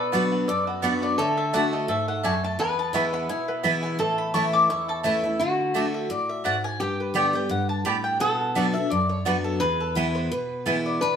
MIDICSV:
0, 0, Header, 1, 6, 480
1, 0, Start_track
1, 0, Tempo, 351083
1, 1619, Time_signature, 4, 2, 24, 8
1, 15261, End_track
2, 0, Start_track
2, 0, Title_t, "Mandolin"
2, 0, Program_c, 0, 25
2, 653, Note_on_c, 0, 74, 79
2, 908, Note_off_c, 0, 74, 0
2, 920, Note_on_c, 0, 66, 66
2, 1129, Note_on_c, 0, 71, 78
2, 1132, Note_off_c, 0, 66, 0
2, 1386, Note_off_c, 0, 71, 0
2, 1406, Note_on_c, 0, 74, 107
2, 1615, Note_off_c, 0, 74, 0
2, 1621, Note_on_c, 0, 73, 75
2, 1873, Note_off_c, 0, 73, 0
2, 1878, Note_on_c, 0, 76, 88
2, 2091, Note_off_c, 0, 76, 0
2, 2104, Note_on_c, 0, 78, 117
2, 2355, Note_off_c, 0, 78, 0
2, 2364, Note_on_c, 0, 75, 90
2, 2575, Note_off_c, 0, 75, 0
2, 2602, Note_on_c, 0, 76, 91
2, 2841, Note_off_c, 0, 76, 0
2, 2847, Note_on_c, 0, 78, 96
2, 3056, Note_off_c, 0, 78, 0
2, 3072, Note_on_c, 0, 80, 96
2, 3319, Note_off_c, 0, 80, 0
2, 3342, Note_on_c, 0, 81, 112
2, 3544, Note_off_c, 0, 81, 0
2, 3564, Note_on_c, 0, 80, 94
2, 3806, Note_off_c, 0, 80, 0
2, 3815, Note_on_c, 0, 81, 100
2, 4021, Note_off_c, 0, 81, 0
2, 4030, Note_on_c, 0, 85, 117
2, 4279, Note_off_c, 0, 85, 0
2, 4288, Note_on_c, 0, 83, 106
2, 4498, Note_off_c, 0, 83, 0
2, 4507, Note_on_c, 0, 80, 93
2, 4757, Note_off_c, 0, 80, 0
2, 4759, Note_on_c, 0, 71, 70
2, 4973, Note_off_c, 0, 71, 0
2, 4978, Note_on_c, 0, 76, 85
2, 5227, Note_off_c, 0, 76, 0
2, 5233, Note_on_c, 0, 80, 101
2, 5450, Note_off_c, 0, 80, 0
2, 5456, Note_on_c, 0, 81, 92
2, 5711, Note_off_c, 0, 81, 0
2, 5716, Note_on_c, 0, 83, 103
2, 5928, Note_off_c, 0, 83, 0
2, 5934, Note_on_c, 0, 85, 106
2, 6191, Note_off_c, 0, 85, 0
2, 6197, Note_on_c, 0, 86, 118
2, 6413, Note_off_c, 0, 86, 0
2, 6426, Note_on_c, 0, 85, 101
2, 6678, Note_off_c, 0, 85, 0
2, 6687, Note_on_c, 0, 81, 101
2, 6817, Note_off_c, 0, 81, 0
2, 8124, Note_on_c, 0, 76, 86
2, 8336, Note_off_c, 0, 76, 0
2, 8351, Note_on_c, 0, 74, 82
2, 8600, Note_off_c, 0, 74, 0
2, 8604, Note_on_c, 0, 76, 84
2, 8812, Note_off_c, 0, 76, 0
2, 8818, Note_on_c, 0, 78, 89
2, 9074, Note_off_c, 0, 78, 0
2, 9081, Note_on_c, 0, 80, 113
2, 9295, Note_off_c, 0, 80, 0
2, 9312, Note_on_c, 0, 79, 94
2, 9561, Note_off_c, 0, 79, 0
2, 9572, Note_on_c, 0, 71, 72
2, 9781, Note_off_c, 0, 71, 0
2, 9787, Note_on_c, 0, 74, 88
2, 10038, Note_off_c, 0, 74, 0
2, 10053, Note_on_c, 0, 79, 97
2, 10260, Note_off_c, 0, 79, 0
2, 10265, Note_on_c, 0, 78, 89
2, 10509, Note_off_c, 0, 78, 0
2, 10515, Note_on_c, 0, 81, 92
2, 10732, Note_off_c, 0, 81, 0
2, 10743, Note_on_c, 0, 83, 100
2, 10984, Note_off_c, 0, 83, 0
2, 10990, Note_on_c, 0, 79, 99
2, 11203, Note_off_c, 0, 79, 0
2, 11208, Note_on_c, 0, 78, 82
2, 11904, Note_off_c, 0, 78, 0
2, 11942, Note_on_c, 0, 76, 102
2, 12165, Note_off_c, 0, 76, 0
2, 12171, Note_on_c, 0, 74, 87
2, 12428, Note_off_c, 0, 74, 0
2, 12434, Note_on_c, 0, 73, 85
2, 12650, Note_off_c, 0, 73, 0
2, 12665, Note_on_c, 0, 71, 86
2, 12905, Note_off_c, 0, 71, 0
2, 12911, Note_on_c, 0, 69, 97
2, 13129, Note_off_c, 0, 69, 0
2, 13143, Note_on_c, 0, 68, 72
2, 13395, Note_off_c, 0, 68, 0
2, 13403, Note_on_c, 0, 69, 84
2, 13614, Note_off_c, 0, 69, 0
2, 13619, Note_on_c, 0, 71, 84
2, 13870, Note_off_c, 0, 71, 0
2, 13876, Note_on_c, 0, 72, 90
2, 14090, Note_off_c, 0, 72, 0
2, 14101, Note_on_c, 0, 71, 82
2, 14788, Note_off_c, 0, 71, 0
2, 14844, Note_on_c, 0, 74, 89
2, 15261, Note_off_c, 0, 74, 0
2, 15261, End_track
3, 0, Start_track
3, 0, Title_t, "Mandolin"
3, 0, Program_c, 1, 25
3, 166, Note_on_c, 1, 59, 88
3, 171, Note_on_c, 1, 66, 90
3, 176, Note_on_c, 1, 74, 107
3, 182, Note_on_c, 1, 78, 98
3, 304, Note_off_c, 1, 59, 0
3, 307, Note_off_c, 1, 66, 0
3, 310, Note_off_c, 1, 74, 0
3, 312, Note_off_c, 1, 78, 0
3, 1122, Note_on_c, 1, 59, 88
3, 1127, Note_on_c, 1, 66, 87
3, 1131, Note_on_c, 1, 74, 98
3, 1138, Note_on_c, 1, 78, 94
3, 1263, Note_off_c, 1, 59, 0
3, 1266, Note_off_c, 1, 66, 0
3, 1268, Note_off_c, 1, 74, 0
3, 1271, Note_off_c, 1, 78, 0
3, 2092, Note_on_c, 1, 57, 81
3, 2099, Note_on_c, 1, 66, 102
3, 2100, Note_on_c, 1, 74, 106
3, 2104, Note_on_c, 1, 81, 106
3, 2229, Note_off_c, 1, 57, 0
3, 2232, Note_off_c, 1, 66, 0
3, 2233, Note_off_c, 1, 74, 0
3, 2234, Note_off_c, 1, 81, 0
3, 3053, Note_on_c, 1, 57, 88
3, 3059, Note_on_c, 1, 66, 95
3, 3059, Note_on_c, 1, 74, 93
3, 3065, Note_on_c, 1, 81, 108
3, 3190, Note_off_c, 1, 57, 0
3, 3193, Note_off_c, 1, 66, 0
3, 3193, Note_off_c, 1, 74, 0
3, 3196, Note_off_c, 1, 81, 0
3, 4016, Note_on_c, 1, 59, 98
3, 4026, Note_on_c, 1, 64, 91
3, 4029, Note_on_c, 1, 71, 101
3, 4031, Note_on_c, 1, 80, 112
3, 4152, Note_off_c, 1, 59, 0
3, 4156, Note_off_c, 1, 64, 0
3, 4158, Note_off_c, 1, 71, 0
3, 4159, Note_off_c, 1, 80, 0
3, 4967, Note_on_c, 1, 59, 95
3, 4970, Note_on_c, 1, 64, 101
3, 4976, Note_on_c, 1, 71, 91
3, 4984, Note_on_c, 1, 80, 99
3, 5107, Note_off_c, 1, 59, 0
3, 5109, Note_off_c, 1, 64, 0
3, 5112, Note_off_c, 1, 71, 0
3, 5116, Note_off_c, 1, 80, 0
3, 5931, Note_on_c, 1, 57, 90
3, 5940, Note_on_c, 1, 64, 90
3, 5940, Note_on_c, 1, 73, 94
3, 5947, Note_on_c, 1, 81, 100
3, 6070, Note_off_c, 1, 57, 0
3, 6074, Note_off_c, 1, 64, 0
3, 6074, Note_off_c, 1, 73, 0
3, 6078, Note_off_c, 1, 81, 0
3, 6884, Note_on_c, 1, 57, 103
3, 6892, Note_on_c, 1, 64, 90
3, 6897, Note_on_c, 1, 73, 95
3, 6901, Note_on_c, 1, 81, 100
3, 7026, Note_off_c, 1, 57, 0
3, 7030, Note_off_c, 1, 64, 0
3, 7033, Note_off_c, 1, 73, 0
3, 7035, Note_off_c, 1, 81, 0
3, 7849, Note_on_c, 1, 57, 98
3, 7854, Note_on_c, 1, 66, 84
3, 7863, Note_on_c, 1, 74, 98
3, 7867, Note_on_c, 1, 81, 96
3, 7989, Note_off_c, 1, 57, 0
3, 7992, Note_off_c, 1, 66, 0
3, 7996, Note_off_c, 1, 74, 0
3, 7998, Note_off_c, 1, 81, 0
3, 8804, Note_on_c, 1, 57, 85
3, 8811, Note_on_c, 1, 66, 97
3, 8819, Note_on_c, 1, 74, 105
3, 8822, Note_on_c, 1, 81, 98
3, 8947, Note_off_c, 1, 57, 0
3, 8950, Note_off_c, 1, 66, 0
3, 8954, Note_off_c, 1, 74, 0
3, 8956, Note_off_c, 1, 81, 0
3, 9771, Note_on_c, 1, 59, 91
3, 9776, Note_on_c, 1, 67, 88
3, 9780, Note_on_c, 1, 74, 91
3, 9785, Note_on_c, 1, 79, 112
3, 9910, Note_off_c, 1, 59, 0
3, 9913, Note_off_c, 1, 67, 0
3, 9915, Note_off_c, 1, 74, 0
3, 9917, Note_off_c, 1, 79, 0
3, 10734, Note_on_c, 1, 59, 95
3, 10739, Note_on_c, 1, 67, 99
3, 10744, Note_on_c, 1, 74, 109
3, 10749, Note_on_c, 1, 79, 102
3, 10872, Note_off_c, 1, 59, 0
3, 10874, Note_off_c, 1, 67, 0
3, 10877, Note_off_c, 1, 74, 0
3, 10879, Note_off_c, 1, 79, 0
3, 11692, Note_on_c, 1, 59, 91
3, 11694, Note_on_c, 1, 66, 93
3, 11698, Note_on_c, 1, 74, 90
3, 11705, Note_on_c, 1, 78, 109
3, 11830, Note_off_c, 1, 59, 0
3, 11831, Note_off_c, 1, 66, 0
3, 11833, Note_off_c, 1, 74, 0
3, 11837, Note_off_c, 1, 78, 0
3, 12649, Note_on_c, 1, 59, 101
3, 12657, Note_on_c, 1, 66, 99
3, 12661, Note_on_c, 1, 74, 97
3, 12664, Note_on_c, 1, 78, 103
3, 12788, Note_off_c, 1, 59, 0
3, 12792, Note_off_c, 1, 66, 0
3, 12794, Note_off_c, 1, 74, 0
3, 12796, Note_off_c, 1, 78, 0
3, 13616, Note_on_c, 1, 59, 91
3, 13622, Note_on_c, 1, 64, 91
3, 13623, Note_on_c, 1, 71, 94
3, 13631, Note_on_c, 1, 80, 103
3, 13751, Note_off_c, 1, 59, 0
3, 13754, Note_off_c, 1, 64, 0
3, 13755, Note_off_c, 1, 71, 0
3, 13759, Note_off_c, 1, 80, 0
3, 14570, Note_on_c, 1, 59, 86
3, 14577, Note_on_c, 1, 64, 94
3, 14586, Note_on_c, 1, 71, 98
3, 14586, Note_on_c, 1, 80, 110
3, 14708, Note_off_c, 1, 59, 0
3, 14711, Note_off_c, 1, 64, 0
3, 14715, Note_off_c, 1, 71, 0
3, 14715, Note_off_c, 1, 80, 0
3, 15261, End_track
4, 0, Start_track
4, 0, Title_t, "Resonator guitar played with a steel bar"
4, 0, Program_c, 2, 25
4, 0, Note_on_c, 2, 71, 109
4, 1612, Note_on_c, 2, 69, 102
4, 1674, Note_off_c, 2, 71, 0
4, 3482, Note_off_c, 2, 69, 0
4, 3548, Note_on_c, 2, 71, 102
4, 5411, Note_off_c, 2, 71, 0
4, 5460, Note_on_c, 2, 69, 89
4, 7108, Note_off_c, 2, 69, 0
4, 7376, Note_on_c, 2, 66, 90
4, 9289, Note_off_c, 2, 66, 0
4, 9294, Note_on_c, 2, 67, 95
4, 11224, Note_on_c, 2, 69, 112
4, 11276, Note_off_c, 2, 67, 0
4, 13087, Note_off_c, 2, 69, 0
4, 13124, Note_on_c, 2, 71, 120
4, 14776, Note_off_c, 2, 71, 0
4, 15054, Note_on_c, 2, 71, 111
4, 15261, Note_off_c, 2, 71, 0
4, 15261, End_track
5, 0, Start_track
5, 0, Title_t, "Five-string banjo"
5, 0, Program_c, 3, 105
5, 0, Note_on_c, 3, 59, 75
5, 0, Note_on_c, 3, 69, 62
5, 169, Note_on_c, 3, 66, 61
5, 382, Note_off_c, 3, 59, 0
5, 433, Note_on_c, 3, 59, 71
5, 612, Note_off_c, 3, 69, 0
5, 654, Note_on_c, 3, 69, 63
5, 862, Note_off_c, 3, 66, 0
5, 900, Note_off_c, 3, 59, 0
5, 916, Note_on_c, 3, 59, 58
5, 1140, Note_on_c, 3, 66, 58
5, 1345, Note_off_c, 3, 69, 0
5, 1381, Note_off_c, 3, 59, 0
5, 1397, Note_on_c, 3, 59, 65
5, 1614, Note_off_c, 3, 59, 0
5, 1619, Note_off_c, 3, 66, 0
5, 1619, Note_on_c, 3, 57, 80
5, 1877, Note_on_c, 3, 69, 57
5, 2099, Note_on_c, 3, 66, 58
5, 2308, Note_off_c, 3, 57, 0
5, 2361, Note_on_c, 3, 57, 78
5, 2534, Note_off_c, 3, 69, 0
5, 2583, Note_on_c, 3, 69, 67
5, 2789, Note_off_c, 3, 66, 0
5, 2825, Note_off_c, 3, 57, 0
5, 2841, Note_on_c, 3, 57, 59
5, 3064, Note_on_c, 3, 66, 55
5, 3271, Note_off_c, 3, 69, 0
5, 3313, Note_off_c, 3, 57, 0
5, 3329, Note_on_c, 3, 57, 62
5, 3542, Note_off_c, 3, 66, 0
5, 3544, Note_off_c, 3, 57, 0
5, 3553, Note_on_c, 3, 59, 76
5, 4023, Note_on_c, 3, 64, 58
5, 4236, Note_off_c, 3, 59, 0
5, 4280, Note_on_c, 3, 59, 78
5, 4486, Note_off_c, 3, 64, 0
5, 4503, Note_on_c, 3, 64, 64
5, 4752, Note_off_c, 3, 59, 0
5, 4768, Note_on_c, 3, 59, 57
5, 4969, Note_off_c, 3, 64, 0
5, 4985, Note_on_c, 3, 64, 55
5, 5237, Note_off_c, 3, 59, 0
5, 5254, Note_on_c, 3, 59, 62
5, 5463, Note_off_c, 3, 59, 0
5, 5464, Note_off_c, 3, 64, 0
5, 5468, Note_on_c, 3, 57, 76
5, 5927, Note_off_c, 3, 57, 0
5, 5943, Note_on_c, 3, 57, 57
5, 6201, Note_on_c, 3, 61, 64
5, 6418, Note_on_c, 3, 64, 68
5, 6632, Note_off_c, 3, 57, 0
5, 6677, Note_on_c, 3, 69, 58
5, 6858, Note_off_c, 3, 61, 0
5, 6896, Note_on_c, 3, 57, 66
5, 7109, Note_off_c, 3, 64, 0
5, 7162, Note_on_c, 3, 64, 62
5, 7336, Note_off_c, 3, 69, 0
5, 7379, Note_off_c, 3, 57, 0
5, 7382, Note_off_c, 3, 64, 0
5, 15055, Note_on_c, 3, 62, 64
5, 15261, Note_off_c, 3, 62, 0
5, 15261, End_track
6, 0, Start_track
6, 0, Title_t, "Steel-string acoustic guitar"
6, 0, Program_c, 4, 25
6, 0, Note_on_c, 4, 47, 91
6, 180, Note_on_c, 4, 54, 87
6, 191, Note_on_c, 4, 59, 98
6, 196, Note_on_c, 4, 62, 92
6, 205, Note_on_c, 4, 66, 94
6, 609, Note_off_c, 4, 47, 0
6, 637, Note_off_c, 4, 54, 0
6, 643, Note_off_c, 4, 59, 0
6, 645, Note_off_c, 4, 62, 0
6, 650, Note_off_c, 4, 66, 0
6, 667, Note_on_c, 4, 42, 95
6, 1128, Note_on_c, 4, 54, 86
6, 1144, Note_on_c, 4, 59, 95
6, 1145, Note_on_c, 4, 62, 97
6, 1157, Note_on_c, 4, 66, 102
6, 1580, Note_off_c, 4, 42, 0
6, 1592, Note_off_c, 4, 54, 0
6, 1600, Note_off_c, 4, 59, 0
6, 1600, Note_off_c, 4, 62, 0
6, 1606, Note_off_c, 4, 66, 0
6, 1626, Note_on_c, 4, 50, 96
6, 2086, Note_off_c, 4, 50, 0
6, 2102, Note_on_c, 4, 50, 90
6, 2108, Note_on_c, 4, 57, 92
6, 2117, Note_on_c, 4, 62, 94
6, 2126, Note_on_c, 4, 66, 95
6, 2559, Note_off_c, 4, 50, 0
6, 2562, Note_off_c, 4, 57, 0
6, 2566, Note_off_c, 4, 62, 0
6, 2571, Note_off_c, 4, 66, 0
6, 2574, Note_on_c, 4, 44, 96
6, 3035, Note_off_c, 4, 44, 0
6, 3072, Note_on_c, 4, 42, 91
6, 3524, Note_off_c, 4, 42, 0
6, 3538, Note_on_c, 4, 40, 91
6, 4006, Note_on_c, 4, 52, 87
6, 4020, Note_on_c, 4, 56, 94
6, 4025, Note_on_c, 4, 59, 89
6, 4033, Note_on_c, 4, 64, 91
6, 4456, Note_off_c, 4, 40, 0
6, 4472, Note_off_c, 4, 52, 0
6, 4479, Note_off_c, 4, 56, 0
6, 4481, Note_off_c, 4, 59, 0
6, 4485, Note_off_c, 4, 64, 0
6, 4503, Note_on_c, 4, 47, 89
6, 4975, Note_on_c, 4, 52, 86
6, 4979, Note_on_c, 4, 56, 95
6, 4988, Note_on_c, 4, 59, 98
6, 4992, Note_on_c, 4, 64, 106
6, 5419, Note_off_c, 4, 47, 0
6, 5436, Note_off_c, 4, 52, 0
6, 5439, Note_off_c, 4, 56, 0
6, 5443, Note_off_c, 4, 59, 0
6, 5445, Note_off_c, 4, 64, 0
6, 5451, Note_on_c, 4, 45, 92
6, 5932, Note_on_c, 4, 52, 84
6, 5936, Note_on_c, 4, 57, 99
6, 5943, Note_on_c, 4, 61, 88
6, 5959, Note_on_c, 4, 64, 92
6, 6373, Note_off_c, 4, 45, 0
6, 6395, Note_off_c, 4, 52, 0
6, 6398, Note_off_c, 4, 57, 0
6, 6401, Note_off_c, 4, 61, 0
6, 6409, Note_off_c, 4, 64, 0
6, 6425, Note_on_c, 4, 40, 92
6, 6892, Note_on_c, 4, 52, 92
6, 6902, Note_on_c, 4, 57, 100
6, 6912, Note_on_c, 4, 61, 98
6, 6914, Note_on_c, 4, 64, 92
6, 7141, Note_off_c, 4, 64, 0
6, 7148, Note_off_c, 4, 52, 0
6, 7153, Note_off_c, 4, 57, 0
6, 7157, Note_on_c, 4, 64, 55
6, 7158, Note_off_c, 4, 61, 0
6, 7181, Note_on_c, 4, 61, 49
6, 7340, Note_off_c, 4, 40, 0
6, 7371, Note_off_c, 4, 64, 0
6, 7383, Note_off_c, 4, 61, 0
6, 7389, Note_on_c, 4, 50, 93
6, 7841, Note_off_c, 4, 50, 0
6, 7857, Note_on_c, 4, 50, 88
6, 7874, Note_on_c, 4, 57, 91
6, 7881, Note_on_c, 4, 62, 91
6, 7884, Note_on_c, 4, 66, 86
6, 8318, Note_off_c, 4, 50, 0
6, 8327, Note_off_c, 4, 57, 0
6, 8330, Note_off_c, 4, 62, 0
6, 8332, Note_off_c, 4, 66, 0
6, 8338, Note_on_c, 4, 45, 88
6, 8799, Note_off_c, 4, 45, 0
6, 8828, Note_on_c, 4, 44, 89
6, 9284, Note_off_c, 4, 44, 0
6, 9301, Note_on_c, 4, 43, 93
6, 9759, Note_on_c, 4, 50, 84
6, 9769, Note_on_c, 4, 55, 89
6, 9779, Note_on_c, 4, 59, 93
6, 9788, Note_on_c, 4, 67, 99
6, 10007, Note_off_c, 4, 67, 0
6, 10022, Note_off_c, 4, 50, 0
6, 10023, Note_on_c, 4, 67, 61
6, 10027, Note_off_c, 4, 55, 0
6, 10028, Note_off_c, 4, 59, 0
6, 10044, Note_on_c, 4, 59, 49
6, 10218, Note_off_c, 4, 43, 0
6, 10244, Note_off_c, 4, 67, 0
6, 10246, Note_on_c, 4, 43, 93
6, 10254, Note_off_c, 4, 59, 0
6, 10713, Note_off_c, 4, 43, 0
6, 10731, Note_on_c, 4, 45, 94
6, 11195, Note_off_c, 4, 45, 0
6, 11216, Note_on_c, 4, 47, 97
6, 11696, Note_on_c, 4, 54, 88
6, 11705, Note_on_c, 4, 59, 105
6, 11708, Note_on_c, 4, 62, 104
6, 11723, Note_on_c, 4, 66, 98
6, 11948, Note_off_c, 4, 66, 0
6, 11950, Note_off_c, 4, 54, 0
6, 11954, Note_off_c, 4, 59, 0
6, 11956, Note_off_c, 4, 62, 0
6, 11964, Note_on_c, 4, 66, 64
6, 11989, Note_on_c, 4, 62, 53
6, 12135, Note_off_c, 4, 47, 0
6, 12174, Note_off_c, 4, 66, 0
6, 12186, Note_off_c, 4, 62, 0
6, 12188, Note_on_c, 4, 42, 95
6, 12656, Note_on_c, 4, 54, 94
6, 12661, Note_on_c, 4, 59, 102
6, 12670, Note_on_c, 4, 62, 92
6, 12673, Note_on_c, 4, 66, 92
6, 13100, Note_off_c, 4, 42, 0
6, 13116, Note_off_c, 4, 54, 0
6, 13119, Note_off_c, 4, 59, 0
6, 13123, Note_off_c, 4, 62, 0
6, 13125, Note_off_c, 4, 66, 0
6, 13135, Note_on_c, 4, 40, 94
6, 13608, Note_on_c, 4, 52, 83
6, 13620, Note_on_c, 4, 56, 96
6, 13628, Note_on_c, 4, 59, 96
6, 13635, Note_on_c, 4, 64, 104
6, 14053, Note_off_c, 4, 40, 0
6, 14072, Note_off_c, 4, 52, 0
6, 14078, Note_off_c, 4, 56, 0
6, 14082, Note_off_c, 4, 59, 0
6, 14085, Note_off_c, 4, 64, 0
6, 14103, Note_on_c, 4, 47, 90
6, 14569, Note_on_c, 4, 52, 86
6, 14578, Note_on_c, 4, 56, 91
6, 14583, Note_on_c, 4, 59, 97
6, 14593, Note_on_c, 4, 64, 102
6, 15016, Note_off_c, 4, 47, 0
6, 15032, Note_off_c, 4, 52, 0
6, 15036, Note_off_c, 4, 56, 0
6, 15038, Note_off_c, 4, 59, 0
6, 15043, Note_off_c, 4, 64, 0
6, 15071, Note_on_c, 4, 47, 92
6, 15261, Note_off_c, 4, 47, 0
6, 15261, End_track
0, 0, End_of_file